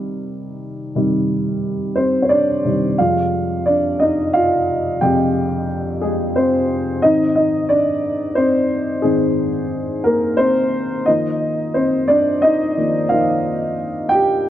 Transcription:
0.00 0.95 C3 soft
0.00 0.96 D#3 soft
0.00 0.96 G3 soft
0.95 2.63 C3 soft
0.95 2.64 D#3 soft
0.95 2.64 G3 soft
1.96 2.04 C4 soft
1.96 2.02 C5 medium
2.22 2.30 C#5 soft
2.29 2.95 D4 soft
2.29 2.94 D5 medium
2.65 2.95 C3 soft
2.65 2.95 D#3 soft
2.65 2.96 G3 soft
2.98 3.96 F2 soft
2.98 3.97 C3 soft
2.98 3.97 G#3 soft
2.98 3.63 F4 soft
2.98 3.62 F5 medium
3.66 3.99 D4 soft
3.66 4.01 D5 medium
3.99 4.32 D#4 medium
3.99 4.35 D#5 medium
4.33 4.98 F4 medium
4.33 4.97 F5 medium
5.01 5.46 F2 soft
5.01 5.47 C3 soft
5.01 5.47 G#3 soft
5.01 5.65 G4 medium
5.01 5.65 G5 medium
6.02 6.34 G#3 medium
6.02 6.37 G#4 medium
6.36 7.00 C4 medium
6.36 6.99 C5 medium
7.02 7.99 G#2 soft
7.02 7.99 D#3 soft
7.02 8.00 C4 soft
7.02 7.35 D#4 medium
7.02 7.34 D#5 medium
7.35 7.68 D#4 medium
7.35 7.70 D#5 medium
7.69 8.33 D4 medium
7.69 8.38 D5 medium
8.35 9.00 C4 medium
8.35 8.99 C5 medium
9.02 9.48 G#2 soft
9.02 9.49 D#3 soft
9.02 10.01 G#3 medium
9.02 9.49 C4 soft
9.02 10.00 G#4 medium
10.04 10.37 A#3 soft
10.04 10.39 A#4 medium
10.37 11.03 C4 soft
10.37 11.02 C5 medium
11.06 12.04 D#3 soft
11.06 12.05 F3 soft
11.06 12.05 A#3 soft
11.06 11.71 D#4 medium
11.06 11.76 D#5 medium
11.74 11.83 C4 medium
11.74 11.82 C5 medium
12.08 12.41 D4 medium
12.08 12.39 D5 medium
12.42 13.06 D#4 medium
12.42 13.05 D#5 medium
12.77 13.07 D#3 soft
12.77 13.07 F3 soft
12.77 13.07 A#3 soft
13.09 13.54 D#3 soft
13.09 13.55 F3 soft
13.09 13.55 A#3 soft
13.09 13.73 F4 medium
13.09 13.72 F5 medium
14.09 14.49 G4 medium
14.09 14.49 G5 medium

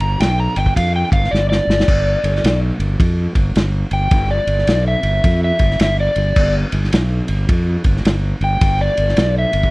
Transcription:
0.00 0.15 G1 medium
0.00 0.19 A#5 medium
0.00 ride medium
0.20 0.47 B1 medium
0.20 0.38 G5 medium
0.20 snare loud
0.20 ride medium
0.40 0.57 A#5 medium
0.56 0.71 G1 medium
0.56 0.75 G5 medium
0.56 ride medium
0.66 kick medium
0.76 1.03 F2 medium
0.76 0.94 F5 medium
0.76 kick medium
0.76 ride loud
0.96 1.13 G5 medium
1.12 1.27 G1 medium
1.12 1.31 F5 medium
1.12 kick medium
1.12 ride medium
1.24 snare soft
1.31 1.59 G1 medium
1.31 1.48 D5 medium
1.31 snare medium
1.50 2.59 D5 loud
1.50 snare medium
1.67 1.82 G1 medium
1.67 snare medium
1.80 snare medium
1.88 2.14 G1 medium
1.88 kick loud
1.88 crash loud
2.24 2.39 G1 medium
2.24 ride medium
2.36 snare soft
2.44 2.70 B1 medium
2.44 snare loud
2.44 ride medium
2.79 2.95 G1 medium
2.79 ride medium
3.00 3.26 F2 medium
3.00 kick loud
3.00 ride medium
3.35 3.51 G1 medium
3.35 kick medium
3.35 ride medium
3.55 3.83 G1 medium
3.55 snare loud
3.55 ride medium
3.91 4.07 G1 medium
3.91 4.30 G5 medium
3.91 ride medium
4.11 4.38 G1 medium
4.11 kick loud
4.11 ride medium
4.31 4.85 D5 loud
4.47 4.62 G1 medium
4.47 ride medium
4.58 snare soft
4.67 4.94 B1 medium
4.67 snare loud
4.67 ride medium
4.88 5.42 E5 medium
5.03 5.19 G1 medium
5.03 ride medium
5.24 5.51 F2 medium
5.24 kick loud
5.24 ride medium
5.44 5.80 E5 medium
5.59 5.75 G1 medium
5.59 kick medium
5.59 ride medium
5.71 snare soft
5.79 6.07 G1 medium
5.79 6.00 E5 medium
5.79 snare loud
5.79 ride loud
6.00 6.54 D5 loud
6.16 6.31 G1 medium
6.16 ride medium
6.36 6.63 G1 loud
6.36 kick loud
6.36 crash loud
6.72 6.88 G1 medium
6.72 ride medium
6.84 snare soft
6.92 7.20 B1 medium
6.92 snare loud
6.92 ride medium
7.28 7.44 G1 medium
7.28 ride medium
7.49 7.76 F2 medium
7.49 kick loud
7.49 ride loud
7.84 8.00 G1 medium
7.84 kick medium
7.84 ride medium
7.97 snare soft
8.05 8.32 G1 medium
8.05 snare loud
8.05 ride medium
8.41 8.56 G1 loud
8.41 8.80 G5 loud
8.41 ride medium
8.61 8.88 G1 loud
8.61 kick loud
8.61 ride loud
8.81 9.35 D5 loud
8.97 9.13 G1 medium
8.97 ride medium
9.09 snare soft
9.17 9.44 B1 medium
9.17 snare loud
9.17 ride medium
9.38 9.71 E5 medium
9.53 9.69 G1 medium
9.53 ride medium
9.63 kick medium

